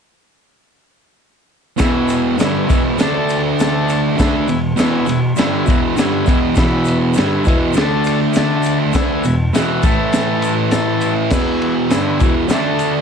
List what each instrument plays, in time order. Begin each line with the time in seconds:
1.77 distorted electric guitar E2 B2 E3, transistor combo organ B4 E5, kick, snare, ride, shaker
1.82 transistor combo organ G#5
2.08 ride, shaker
2.38 distorted electric guitar G2 D3 G3, snare, ride, shaker
2.43 transistor combo organ B4 E5 G#5
2.68 distorted electric guitar E2 B2 E3, kick, ride, shaker
2.98 distorted electric guitar D3 A3 D4, transistor combo organ A4 A5, snare, ride, shaker
3.02 transistor combo organ D5
3.29 ride, shaker
3.59 transistor combo organ A4 D5 A5, snare, ride, shaker
3.89 ride, shaker
4.17 distorted electric guitar D3 A3 D4, transistor combo organ B4 E5 G#5, kick, snare, ride, shaker
4.47 distorted electric guitar E2 B2, ride, shaker
4.76 distorted electric guitar E2 B2 E3, transistor combo organ B4 E5 G#5, snare, ride, shaker
5.06 distorted electric guitar E2 B2, ride, shaker
5.36 distorted electric guitar G2 D3 G3, transistor combo organ B4 E5 G#5, snare, ride, shaker
5.66 distorted electric guitar E2 B2 E3, kick, ride, shaker
5.97 distorted electric guitar G2 D3 G3, transistor combo organ B4 E5 G#5, snare, ride, shaker
6.26 distorted electric guitar E2 B2 E3, kick, ride, shaker
6.55 distorted electric guitar E2 B2 E3, transistor combo organ B4 E5, kick, snare, ride, shaker
6.60 transistor combo organ B5
6.85 ride, shaker
7.14 distorted electric guitar G2 D3, transistor combo organ B4 E5, ride, shaker
7.18 distorted electric guitar G3, transistor combo organ G#5, snare
7.45 distorted electric guitar E2 B2 E3, kick, ride, shaker
7.73 distorted electric guitar D3 A3 D4, ride, shaker
7.78 transistor combo organ A4 D5 A5, snare
8.04 ride, shaker
8.33 snare, ride, shaker
8.38 transistor combo organ A4 D5 A5
8.63 ride, shaker
8.93 distorted electric guitar D3 A3 D4, transistor combo organ B4 E5 G#5, kick, snare, ride, shaker
9.24 distorted electric guitar E2 B2, ride, shaker
9.53 distorted electric guitar E2 B2 E3, transistor combo organ B4 E5 F#5, snare, ride, shaker
9.81 distorted electric guitar A2 E3 A3, transistor combo organ A4 E5 A5, kick, ride, shaker
10.13 snare, ride, shaker
10.42 ride, shaker
10.70 transistor combo organ A4 E5 A5, snare, ride, shaker
11.01 ride, shaker
11.30 distorted electric guitar E2 B2 E3, transistor combo organ B4 E5 G#5, kick, snare, crash, shaker
11.62 ride
11.90 distorted electric guitar G2 D3 G3, transistor combo organ B4 E5, snare, ride, shaker
11.94 transistor combo organ G#5
12.20 distorted electric guitar E2 B2 E3, kick, ride, shaker
12.49 distorted electric guitar D3 A3, transistor combo organ D5, snare, ride, shaker
12.54 distorted electric guitar D4, transistor combo organ A4 A5
12.79 ride, shaker